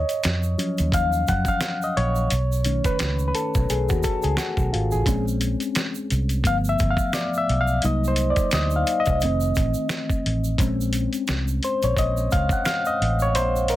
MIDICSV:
0, 0, Header, 1, 4, 480
1, 0, Start_track
1, 0, Key_signature, -5, "minor"
1, 0, Tempo, 689655
1, 1605, Time_signature, 4, 2, 24, 8
1, 9577, End_track
2, 0, Start_track
2, 0, Title_t, "Reed electric piano"
2, 0, Program_c, 0, 4
2, 0, Control_c, 0, 64, 127
2, 0, Note_on_c, 0, 73, 96
2, 0, Note_on_c, 0, 75, 81
2, 74, Note_off_c, 0, 75, 0
2, 401, Note_on_c, 0, 53, 50
2, 405, Note_on_c, 0, 54, 50
2, 407, Note_on_c, 0, 61, 62
2, 654, Note_on_c, 0, 77, 99
2, 737, Note_off_c, 0, 53, 0
2, 739, Note_off_c, 0, 54, 0
2, 740, Note_off_c, 0, 61, 0
2, 896, Note_on_c, 0, 78, 93
2, 897, Note_off_c, 0, 77, 0
2, 1021, Note_off_c, 0, 78, 0
2, 1033, Note_on_c, 0, 77, 84
2, 1276, Note_off_c, 0, 77, 0
2, 1279, Note_on_c, 0, 75, 85
2, 1371, Note_off_c, 0, 73, 0
2, 1371, Note_on_c, 0, 73, 92
2, 1375, Note_off_c, 0, 75, 0
2, 1614, Control_c, 0, 64, 0
2, 1728, Control_c, 0, 64, 127
2, 1843, Note_on_c, 0, 51, 51
2, 1847, Note_on_c, 0, 57, 46
2, 1848, Note_on_c, 0, 61, 57
2, 1987, Note_on_c, 0, 71, 90
2, 2006, Note_off_c, 0, 73, 0
2, 2264, Note_off_c, 0, 71, 0
2, 2282, Note_on_c, 0, 71, 58
2, 2324, Note_off_c, 0, 71, 0
2, 2331, Note_on_c, 0, 69, 80
2, 2536, Note_off_c, 0, 51, 0
2, 2538, Note_off_c, 0, 57, 0
2, 2539, Note_off_c, 0, 61, 0
2, 2575, Note_off_c, 0, 69, 0
2, 2576, Note_on_c, 0, 68, 77
2, 2709, Note_on_c, 0, 66, 76
2, 2714, Note_off_c, 0, 68, 0
2, 2810, Note_off_c, 0, 66, 0
2, 2810, Note_on_c, 0, 69, 77
2, 2948, Note_on_c, 0, 68, 70
2, 2951, Note_off_c, 0, 69, 0
2, 3049, Note_on_c, 0, 66, 80
2, 3050, Note_off_c, 0, 68, 0
2, 3156, Note_off_c, 0, 66, 0
2, 3291, Note_on_c, 0, 65, 74
2, 3425, Note_on_c, 0, 68, 65
2, 3432, Note_off_c, 0, 65, 0
2, 3523, Note_on_c, 0, 61, 56
2, 3531, Note_on_c, 0, 56, 52
2, 3533, Note_on_c, 0, 60, 59
2, 3534, Control_c, 0, 64, 0
2, 3648, Note_off_c, 0, 68, 0
2, 3676, Control_c, 0, 64, 127
2, 4456, Note_off_c, 0, 61, 0
2, 4460, Note_off_c, 0, 56, 0
2, 4461, Note_off_c, 0, 60, 0
2, 4486, Note_on_c, 0, 53, 49
2, 4488, Note_on_c, 0, 57, 47
2, 4492, Note_on_c, 0, 59, 61
2, 4494, Control_c, 0, 64, 0
2, 4502, Note_on_c, 0, 77, 100
2, 4570, Note_off_c, 0, 77, 0
2, 4630, Control_c, 0, 64, 127
2, 4657, Note_on_c, 0, 76, 92
2, 4806, Note_on_c, 0, 77, 95
2, 4815, Note_off_c, 0, 76, 0
2, 4820, Note_off_c, 0, 53, 0
2, 4821, Note_off_c, 0, 57, 0
2, 4823, Note_off_c, 0, 59, 0
2, 4967, Note_on_c, 0, 74, 94
2, 4970, Note_off_c, 0, 77, 0
2, 5131, Note_off_c, 0, 74, 0
2, 5134, Note_on_c, 0, 76, 95
2, 5294, Note_off_c, 0, 76, 0
2, 5294, Note_on_c, 0, 77, 97
2, 5454, Note_off_c, 0, 77, 0
2, 5454, Control_c, 0, 64, 0
2, 5456, Note_on_c, 0, 63, 52
2, 5460, Note_on_c, 0, 54, 52
2, 5462, Note_on_c, 0, 58, 57
2, 5466, Note_on_c, 0, 75, 90
2, 5585, Control_c, 0, 64, 127
2, 5620, Note_off_c, 0, 75, 0
2, 5622, Note_on_c, 0, 72, 86
2, 5778, Note_off_c, 0, 72, 0
2, 5780, Note_on_c, 0, 74, 83
2, 5937, Note_off_c, 0, 74, 0
2, 5943, Note_on_c, 0, 75, 96
2, 6083, Note_off_c, 0, 75, 0
2, 6098, Note_on_c, 0, 77, 83
2, 6256, Note_off_c, 0, 77, 0
2, 6264, Note_on_c, 0, 75, 86
2, 6383, Note_off_c, 0, 63, 0
2, 6385, Note_off_c, 0, 54, 0
2, 6386, Note_off_c, 0, 58, 0
2, 6415, Control_c, 0, 64, 0
2, 6423, Note_on_c, 0, 51, 52
2, 6425, Note_on_c, 0, 57, 48
2, 6428, Note_on_c, 0, 60, 63
2, 6545, Control_c, 0, 64, 127
2, 7106, Note_off_c, 0, 51, 0
2, 7107, Note_off_c, 0, 57, 0
2, 7108, Note_off_c, 0, 60, 0
2, 7372, Note_on_c, 0, 61, 56
2, 7375, Control_c, 0, 64, 0
2, 7375, Note_on_c, 0, 56, 49
2, 7379, Note_on_c, 0, 60, 64
2, 7427, Note_off_c, 0, 75, 0
2, 7485, Control_c, 0, 64, 127
2, 8061, Note_off_c, 0, 61, 0
2, 8062, Note_off_c, 0, 56, 0
2, 8064, Note_off_c, 0, 60, 0
2, 8104, Note_on_c, 0, 72, 81
2, 8238, Note_off_c, 0, 72, 0
2, 8240, Note_on_c, 0, 73, 80
2, 8326, Note_off_c, 0, 73, 0
2, 8343, Note_on_c, 0, 75, 90
2, 8576, Note_on_c, 0, 77, 95
2, 8581, Note_off_c, 0, 75, 0
2, 8714, Note_off_c, 0, 77, 0
2, 8718, Note_on_c, 0, 78, 85
2, 8813, Note_on_c, 0, 77, 93
2, 8814, Note_off_c, 0, 78, 0
2, 8939, Note_off_c, 0, 77, 0
2, 8956, Note_on_c, 0, 75, 92
2, 9197, Note_off_c, 0, 75, 0
2, 9203, Note_on_c, 0, 73, 87
2, 9295, Note_on_c, 0, 72, 100
2, 9297, Note_off_c, 0, 73, 0
2, 9535, Note_on_c, 0, 70, 80
2, 9537, Note_off_c, 0, 72, 0
2, 9577, Note_off_c, 0, 70, 0
2, 9577, End_track
3, 0, Start_track
3, 0, Title_t, "Fingered electric bass"
3, 0, Program_c, 1, 33
3, 174, Note_on_c, 1, 41, 85
3, 379, Note_off_c, 1, 41, 0
3, 555, Note_on_c, 1, 39, 76
3, 638, Note_off_c, 1, 39, 0
3, 648, Note_on_c, 1, 39, 93
3, 855, Note_off_c, 1, 39, 0
3, 899, Note_on_c, 1, 42, 85
3, 1015, Note_off_c, 1, 42, 0
3, 1373, Note_on_c, 1, 34, 91
3, 1578, Note_off_c, 1, 34, 0
3, 1613, Note_on_c, 1, 35, 98
3, 1940, Note_off_c, 1, 35, 0
3, 2094, Note_on_c, 1, 37, 79
3, 2299, Note_off_c, 1, 37, 0
3, 2477, Note_on_c, 1, 35, 80
3, 2559, Note_off_c, 1, 35, 0
3, 2576, Note_on_c, 1, 35, 77
3, 2693, Note_off_c, 1, 35, 0
3, 2721, Note_on_c, 1, 39, 79
3, 2801, Note_off_c, 1, 39, 0
3, 2952, Note_on_c, 1, 37, 81
3, 3036, Note_off_c, 1, 37, 0
3, 3189, Note_on_c, 1, 35, 82
3, 3274, Note_off_c, 1, 35, 0
3, 3299, Note_on_c, 1, 32, 76
3, 3414, Note_off_c, 1, 32, 0
3, 3436, Note_on_c, 1, 33, 91
3, 3518, Note_off_c, 1, 33, 0
3, 3526, Note_on_c, 1, 34, 107
3, 3856, Note_off_c, 1, 34, 0
3, 4257, Note_on_c, 1, 36, 77
3, 4460, Note_off_c, 1, 36, 0
3, 4488, Note_on_c, 1, 31, 96
3, 4695, Note_off_c, 1, 31, 0
3, 4741, Note_on_c, 1, 31, 84
3, 4856, Note_off_c, 1, 31, 0
3, 5215, Note_on_c, 1, 35, 86
3, 5420, Note_off_c, 1, 35, 0
3, 5458, Note_on_c, 1, 36, 98
3, 5783, Note_off_c, 1, 36, 0
3, 5936, Note_on_c, 1, 38, 80
3, 6140, Note_off_c, 1, 38, 0
3, 6318, Note_on_c, 1, 36, 88
3, 6417, Note_on_c, 1, 29, 91
3, 6428, Note_off_c, 1, 36, 0
3, 6621, Note_off_c, 1, 29, 0
3, 6664, Note_on_c, 1, 33, 79
3, 6777, Note_off_c, 1, 33, 0
3, 7142, Note_on_c, 1, 33, 80
3, 7343, Note_off_c, 1, 33, 0
3, 7373, Note_on_c, 1, 34, 101
3, 7700, Note_off_c, 1, 34, 0
3, 7861, Note_on_c, 1, 36, 99
3, 8063, Note_off_c, 1, 36, 0
3, 8235, Note_on_c, 1, 34, 85
3, 8318, Note_off_c, 1, 34, 0
3, 8333, Note_on_c, 1, 34, 89
3, 8538, Note_off_c, 1, 34, 0
3, 8586, Note_on_c, 1, 37, 88
3, 8698, Note_off_c, 1, 37, 0
3, 9058, Note_on_c, 1, 33, 94
3, 9299, Note_off_c, 1, 33, 0
3, 9299, Note_on_c, 1, 34, 115
3, 9577, Note_off_c, 1, 34, 0
3, 9577, End_track
4, 0, Start_track
4, 0, Title_t, "Drums"
4, 63, Note_on_c, 9, 42, 35
4, 66, Note_on_c, 9, 82, 49
4, 132, Note_off_c, 9, 42, 0
4, 136, Note_off_c, 9, 82, 0
4, 164, Note_on_c, 9, 26, 57
4, 164, Note_on_c, 9, 82, 57
4, 167, Note_on_c, 9, 42, 86
4, 174, Note_on_c, 9, 38, 108
4, 234, Note_off_c, 9, 26, 0
4, 234, Note_off_c, 9, 82, 0
4, 237, Note_off_c, 9, 42, 0
4, 244, Note_off_c, 9, 38, 0
4, 300, Note_on_c, 9, 82, 44
4, 369, Note_off_c, 9, 82, 0
4, 412, Note_on_c, 9, 42, 65
4, 412, Note_on_c, 9, 82, 41
4, 481, Note_off_c, 9, 82, 0
4, 482, Note_off_c, 9, 42, 0
4, 544, Note_on_c, 9, 82, 47
4, 545, Note_on_c, 9, 42, 33
4, 613, Note_off_c, 9, 82, 0
4, 615, Note_off_c, 9, 42, 0
4, 641, Note_on_c, 9, 36, 92
4, 651, Note_on_c, 9, 42, 78
4, 652, Note_on_c, 9, 82, 53
4, 711, Note_off_c, 9, 36, 0
4, 720, Note_off_c, 9, 42, 0
4, 721, Note_off_c, 9, 82, 0
4, 784, Note_on_c, 9, 82, 44
4, 854, Note_off_c, 9, 82, 0
4, 887, Note_on_c, 9, 82, 51
4, 894, Note_on_c, 9, 36, 82
4, 894, Note_on_c, 9, 42, 61
4, 956, Note_off_c, 9, 82, 0
4, 964, Note_off_c, 9, 36, 0
4, 964, Note_off_c, 9, 42, 0
4, 1008, Note_on_c, 9, 36, 89
4, 1013, Note_on_c, 9, 82, 42
4, 1078, Note_off_c, 9, 36, 0
4, 1083, Note_off_c, 9, 82, 0
4, 1118, Note_on_c, 9, 38, 113
4, 1122, Note_on_c, 9, 26, 70
4, 1122, Note_on_c, 9, 82, 69
4, 1130, Note_on_c, 9, 42, 76
4, 1188, Note_off_c, 9, 38, 0
4, 1192, Note_off_c, 9, 26, 0
4, 1192, Note_off_c, 9, 82, 0
4, 1199, Note_off_c, 9, 42, 0
4, 1267, Note_on_c, 9, 82, 40
4, 1337, Note_off_c, 9, 82, 0
4, 1373, Note_on_c, 9, 42, 66
4, 1442, Note_off_c, 9, 42, 0
4, 1500, Note_on_c, 9, 82, 44
4, 1569, Note_off_c, 9, 82, 0
4, 1604, Note_on_c, 9, 42, 89
4, 1611, Note_on_c, 9, 82, 68
4, 1674, Note_off_c, 9, 42, 0
4, 1681, Note_off_c, 9, 82, 0
4, 1754, Note_on_c, 9, 82, 43
4, 1824, Note_off_c, 9, 82, 0
4, 1841, Note_on_c, 9, 42, 73
4, 1843, Note_on_c, 9, 82, 46
4, 1911, Note_off_c, 9, 42, 0
4, 1913, Note_off_c, 9, 82, 0
4, 1979, Note_on_c, 9, 42, 36
4, 1981, Note_on_c, 9, 36, 78
4, 1984, Note_on_c, 9, 82, 48
4, 2049, Note_off_c, 9, 42, 0
4, 2050, Note_off_c, 9, 36, 0
4, 2053, Note_off_c, 9, 82, 0
4, 2082, Note_on_c, 9, 42, 83
4, 2086, Note_on_c, 9, 26, 58
4, 2086, Note_on_c, 9, 82, 60
4, 2089, Note_on_c, 9, 38, 116
4, 2152, Note_off_c, 9, 42, 0
4, 2155, Note_off_c, 9, 26, 0
4, 2155, Note_off_c, 9, 82, 0
4, 2159, Note_off_c, 9, 38, 0
4, 2219, Note_on_c, 9, 82, 41
4, 2289, Note_off_c, 9, 82, 0
4, 2329, Note_on_c, 9, 42, 64
4, 2336, Note_on_c, 9, 82, 38
4, 2398, Note_off_c, 9, 42, 0
4, 2406, Note_off_c, 9, 82, 0
4, 2467, Note_on_c, 9, 82, 48
4, 2471, Note_on_c, 9, 36, 98
4, 2537, Note_off_c, 9, 82, 0
4, 2540, Note_off_c, 9, 36, 0
4, 2573, Note_on_c, 9, 82, 54
4, 2574, Note_on_c, 9, 42, 79
4, 2642, Note_off_c, 9, 82, 0
4, 2644, Note_off_c, 9, 42, 0
4, 2706, Note_on_c, 9, 82, 41
4, 2715, Note_on_c, 9, 36, 86
4, 2776, Note_off_c, 9, 82, 0
4, 2784, Note_off_c, 9, 36, 0
4, 2805, Note_on_c, 9, 82, 51
4, 2814, Note_on_c, 9, 36, 83
4, 2816, Note_on_c, 9, 42, 59
4, 2875, Note_off_c, 9, 82, 0
4, 2884, Note_off_c, 9, 36, 0
4, 2886, Note_off_c, 9, 42, 0
4, 2940, Note_on_c, 9, 82, 41
4, 2952, Note_on_c, 9, 42, 34
4, 3009, Note_off_c, 9, 82, 0
4, 3022, Note_off_c, 9, 42, 0
4, 3041, Note_on_c, 9, 38, 117
4, 3050, Note_on_c, 9, 26, 62
4, 3050, Note_on_c, 9, 82, 65
4, 3052, Note_on_c, 9, 42, 78
4, 3110, Note_off_c, 9, 38, 0
4, 3120, Note_off_c, 9, 26, 0
4, 3120, Note_off_c, 9, 82, 0
4, 3122, Note_off_c, 9, 42, 0
4, 3181, Note_on_c, 9, 36, 84
4, 3185, Note_on_c, 9, 82, 40
4, 3251, Note_off_c, 9, 36, 0
4, 3255, Note_off_c, 9, 82, 0
4, 3297, Note_on_c, 9, 42, 66
4, 3367, Note_off_c, 9, 42, 0
4, 3420, Note_on_c, 9, 82, 40
4, 3490, Note_off_c, 9, 82, 0
4, 3521, Note_on_c, 9, 36, 109
4, 3525, Note_on_c, 9, 42, 86
4, 3534, Note_on_c, 9, 82, 66
4, 3590, Note_off_c, 9, 36, 0
4, 3595, Note_off_c, 9, 42, 0
4, 3604, Note_off_c, 9, 82, 0
4, 3674, Note_on_c, 9, 82, 44
4, 3744, Note_off_c, 9, 82, 0
4, 3764, Note_on_c, 9, 42, 73
4, 3766, Note_on_c, 9, 82, 47
4, 3833, Note_off_c, 9, 42, 0
4, 3836, Note_off_c, 9, 82, 0
4, 3899, Note_on_c, 9, 42, 33
4, 3908, Note_on_c, 9, 82, 47
4, 3969, Note_off_c, 9, 42, 0
4, 3978, Note_off_c, 9, 82, 0
4, 4003, Note_on_c, 9, 42, 80
4, 4006, Note_on_c, 9, 26, 63
4, 4006, Note_on_c, 9, 82, 60
4, 4010, Note_on_c, 9, 38, 111
4, 4073, Note_off_c, 9, 42, 0
4, 4076, Note_off_c, 9, 26, 0
4, 4076, Note_off_c, 9, 82, 0
4, 4080, Note_off_c, 9, 38, 0
4, 4140, Note_on_c, 9, 82, 44
4, 4210, Note_off_c, 9, 82, 0
4, 4249, Note_on_c, 9, 42, 67
4, 4255, Note_on_c, 9, 82, 40
4, 4318, Note_off_c, 9, 42, 0
4, 4325, Note_off_c, 9, 82, 0
4, 4380, Note_on_c, 9, 42, 30
4, 4384, Note_on_c, 9, 82, 46
4, 4449, Note_off_c, 9, 42, 0
4, 4454, Note_off_c, 9, 82, 0
4, 4481, Note_on_c, 9, 36, 92
4, 4490, Note_on_c, 9, 42, 73
4, 4492, Note_on_c, 9, 82, 57
4, 4551, Note_off_c, 9, 36, 0
4, 4559, Note_off_c, 9, 42, 0
4, 4562, Note_off_c, 9, 82, 0
4, 4624, Note_on_c, 9, 82, 42
4, 4694, Note_off_c, 9, 82, 0
4, 4724, Note_on_c, 9, 82, 45
4, 4733, Note_on_c, 9, 42, 63
4, 4734, Note_on_c, 9, 36, 84
4, 4794, Note_off_c, 9, 82, 0
4, 4802, Note_off_c, 9, 42, 0
4, 4803, Note_off_c, 9, 36, 0
4, 4850, Note_on_c, 9, 36, 88
4, 4859, Note_on_c, 9, 82, 43
4, 4919, Note_off_c, 9, 36, 0
4, 4929, Note_off_c, 9, 82, 0
4, 4963, Note_on_c, 9, 38, 116
4, 4965, Note_on_c, 9, 26, 67
4, 4965, Note_on_c, 9, 82, 71
4, 4975, Note_on_c, 9, 42, 80
4, 5033, Note_off_c, 9, 38, 0
4, 5035, Note_off_c, 9, 26, 0
4, 5035, Note_off_c, 9, 82, 0
4, 5045, Note_off_c, 9, 42, 0
4, 5107, Note_on_c, 9, 82, 44
4, 5176, Note_off_c, 9, 82, 0
4, 5216, Note_on_c, 9, 42, 68
4, 5286, Note_off_c, 9, 42, 0
4, 5341, Note_on_c, 9, 82, 42
4, 5410, Note_off_c, 9, 82, 0
4, 5442, Note_on_c, 9, 42, 89
4, 5455, Note_on_c, 9, 82, 67
4, 5512, Note_off_c, 9, 42, 0
4, 5524, Note_off_c, 9, 82, 0
4, 5598, Note_on_c, 9, 82, 43
4, 5667, Note_off_c, 9, 82, 0
4, 5680, Note_on_c, 9, 42, 73
4, 5685, Note_on_c, 9, 82, 48
4, 5749, Note_off_c, 9, 42, 0
4, 5754, Note_off_c, 9, 82, 0
4, 5819, Note_on_c, 9, 42, 35
4, 5822, Note_on_c, 9, 36, 79
4, 5827, Note_on_c, 9, 82, 51
4, 5889, Note_off_c, 9, 42, 0
4, 5892, Note_off_c, 9, 36, 0
4, 5896, Note_off_c, 9, 82, 0
4, 5926, Note_on_c, 9, 26, 61
4, 5926, Note_on_c, 9, 82, 60
4, 5927, Note_on_c, 9, 42, 78
4, 5935, Note_on_c, 9, 38, 114
4, 5995, Note_off_c, 9, 26, 0
4, 5995, Note_off_c, 9, 82, 0
4, 5997, Note_off_c, 9, 42, 0
4, 6004, Note_off_c, 9, 38, 0
4, 6059, Note_on_c, 9, 82, 42
4, 6129, Note_off_c, 9, 82, 0
4, 6173, Note_on_c, 9, 82, 42
4, 6174, Note_on_c, 9, 42, 69
4, 6243, Note_off_c, 9, 82, 0
4, 6244, Note_off_c, 9, 42, 0
4, 6303, Note_on_c, 9, 42, 33
4, 6305, Note_on_c, 9, 82, 48
4, 6314, Note_on_c, 9, 36, 90
4, 6373, Note_off_c, 9, 42, 0
4, 6374, Note_off_c, 9, 82, 0
4, 6383, Note_off_c, 9, 36, 0
4, 6410, Note_on_c, 9, 82, 55
4, 6416, Note_on_c, 9, 42, 79
4, 6479, Note_off_c, 9, 82, 0
4, 6486, Note_off_c, 9, 42, 0
4, 6546, Note_on_c, 9, 82, 46
4, 6616, Note_off_c, 9, 82, 0
4, 6647, Note_on_c, 9, 82, 50
4, 6660, Note_on_c, 9, 36, 80
4, 6663, Note_on_c, 9, 42, 61
4, 6717, Note_off_c, 9, 82, 0
4, 6729, Note_off_c, 9, 36, 0
4, 6733, Note_off_c, 9, 42, 0
4, 6779, Note_on_c, 9, 82, 44
4, 6849, Note_off_c, 9, 82, 0
4, 6886, Note_on_c, 9, 38, 112
4, 6889, Note_on_c, 9, 26, 73
4, 6889, Note_on_c, 9, 82, 69
4, 6898, Note_on_c, 9, 42, 87
4, 6956, Note_off_c, 9, 38, 0
4, 6959, Note_off_c, 9, 26, 0
4, 6959, Note_off_c, 9, 82, 0
4, 6967, Note_off_c, 9, 42, 0
4, 7026, Note_on_c, 9, 36, 90
4, 7031, Note_on_c, 9, 82, 41
4, 7096, Note_off_c, 9, 36, 0
4, 7100, Note_off_c, 9, 82, 0
4, 7142, Note_on_c, 9, 42, 73
4, 7211, Note_off_c, 9, 42, 0
4, 7267, Note_on_c, 9, 82, 45
4, 7337, Note_off_c, 9, 82, 0
4, 7366, Note_on_c, 9, 36, 120
4, 7370, Note_on_c, 9, 42, 90
4, 7382, Note_on_c, 9, 82, 70
4, 7436, Note_off_c, 9, 36, 0
4, 7440, Note_off_c, 9, 42, 0
4, 7451, Note_off_c, 9, 82, 0
4, 7523, Note_on_c, 9, 82, 46
4, 7592, Note_off_c, 9, 82, 0
4, 7605, Note_on_c, 9, 42, 75
4, 7609, Note_on_c, 9, 82, 49
4, 7675, Note_off_c, 9, 42, 0
4, 7679, Note_off_c, 9, 82, 0
4, 7744, Note_on_c, 9, 42, 34
4, 7752, Note_on_c, 9, 82, 46
4, 7814, Note_off_c, 9, 42, 0
4, 7822, Note_off_c, 9, 82, 0
4, 7848, Note_on_c, 9, 42, 84
4, 7850, Note_on_c, 9, 26, 63
4, 7850, Note_on_c, 9, 82, 63
4, 7855, Note_on_c, 9, 38, 125
4, 7918, Note_off_c, 9, 42, 0
4, 7920, Note_off_c, 9, 26, 0
4, 7920, Note_off_c, 9, 82, 0
4, 7925, Note_off_c, 9, 38, 0
4, 7988, Note_on_c, 9, 82, 46
4, 8058, Note_off_c, 9, 82, 0
4, 8092, Note_on_c, 9, 42, 65
4, 8101, Note_on_c, 9, 82, 40
4, 8161, Note_off_c, 9, 42, 0
4, 8171, Note_off_c, 9, 82, 0
4, 8230, Note_on_c, 9, 82, 48
4, 8231, Note_on_c, 9, 42, 32
4, 8300, Note_off_c, 9, 42, 0
4, 8300, Note_off_c, 9, 82, 0
4, 8328, Note_on_c, 9, 36, 92
4, 8336, Note_on_c, 9, 82, 56
4, 8341, Note_on_c, 9, 42, 78
4, 8398, Note_off_c, 9, 36, 0
4, 8405, Note_off_c, 9, 82, 0
4, 8410, Note_off_c, 9, 42, 0
4, 8471, Note_on_c, 9, 82, 46
4, 8540, Note_off_c, 9, 82, 0
4, 8569, Note_on_c, 9, 82, 49
4, 8579, Note_on_c, 9, 36, 85
4, 8581, Note_on_c, 9, 42, 64
4, 8639, Note_off_c, 9, 82, 0
4, 8649, Note_off_c, 9, 36, 0
4, 8650, Note_off_c, 9, 42, 0
4, 8695, Note_on_c, 9, 36, 96
4, 8702, Note_on_c, 9, 82, 42
4, 8765, Note_off_c, 9, 36, 0
4, 8772, Note_off_c, 9, 82, 0
4, 8807, Note_on_c, 9, 26, 70
4, 8807, Note_on_c, 9, 82, 69
4, 8811, Note_on_c, 9, 38, 110
4, 8822, Note_on_c, 9, 42, 83
4, 8877, Note_off_c, 9, 26, 0
4, 8877, Note_off_c, 9, 82, 0
4, 8880, Note_off_c, 9, 38, 0
4, 8892, Note_off_c, 9, 42, 0
4, 8945, Note_on_c, 9, 82, 42
4, 9015, Note_off_c, 9, 82, 0
4, 9062, Note_on_c, 9, 42, 75
4, 9132, Note_off_c, 9, 42, 0
4, 9184, Note_on_c, 9, 82, 48
4, 9253, Note_off_c, 9, 82, 0
4, 9291, Note_on_c, 9, 42, 90
4, 9299, Note_on_c, 9, 82, 68
4, 9361, Note_off_c, 9, 42, 0
4, 9369, Note_off_c, 9, 82, 0
4, 9438, Note_on_c, 9, 82, 46
4, 9508, Note_off_c, 9, 82, 0
4, 9524, Note_on_c, 9, 42, 81
4, 9528, Note_on_c, 9, 82, 49
4, 9577, Note_off_c, 9, 42, 0
4, 9577, Note_off_c, 9, 82, 0
4, 9577, End_track
0, 0, End_of_file